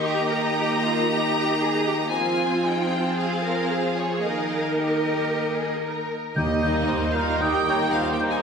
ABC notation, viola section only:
X:1
M:4/4
L:1/8
Q:1/4=114
K:Eb
V:1 name="Viola section" clef=bass
[B,E]8 | [CF]8 | [B,E]6- [B,E] z | z [E,G,]2 [E,G,]2 [E,G,]2 [E,G,] |]